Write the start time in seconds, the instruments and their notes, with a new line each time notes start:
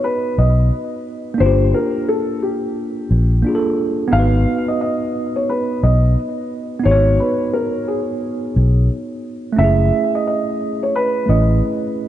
Already playing: tine electric piano B3 D#4 F#4 B4
0.04 felt piano B4
0.38 fingered electric bass B1, felt piano D#5
1.34 tine electric piano A#3 D4
1.40 fingered electric bass G1, tine electric piano F4, felt piano C5
1.46 tine electric piano G4
1.74 felt piano A#4
2.08 felt piano A4
2.42 felt piano G4
3.11 fingered electric bass A#1
3.43 tine electric piano A#3 D4 F4
3.49 tine electric piano G#4
3.55 tine electric piano A4
4.08 tine electric piano B3 D#4
4.13 fingered electric bass G#1, tine electric piano F#4, felt piano F5
4.19 tine electric piano B4
4.68 felt piano D#5
4.81 felt piano D#5
5.36 felt piano C#5
5.49 felt piano B4
5.83 fingered electric bass B1, felt piano D#5
6.79 tine electric piano B3
6.83 fingered electric bass G#1, tine electric piano D#4 F#4, felt piano C#5
6.91 tine electric piano C#5
7.20 felt piano B4
7.53 felt piano A#4
7.88 felt piano G#4
8.56 fingered electric bass B1
9.53 tine electric piano A3 C#4
9.58 fingered electric bass F#1, tine electric piano E4, felt piano E5
9.64 tine electric piano G#4
10.15 felt piano D#5
10.27 felt piano D#5
10.83 felt piano C#5
10.96 felt piano B4
11.26 fingered electric bass A1, tine electric piano A3 C#4, felt piano D#5
11.30 tine electric piano E4 B4